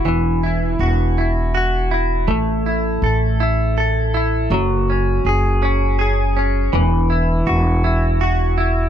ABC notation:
X:1
M:6/8
L:1/8
Q:3/8=54
K:E
V:1 name="Clean electric guitar"
[E,EF] E F E F E | A, E A E A E | F, C G C G C | E, E F E F E |]
V:2 name="Upright bass" clef=bass
E,,,2 E,,,4 | A,,,2 A,,,4 | F,,,2 F,,,4 | E,,,2 E,,,4 |]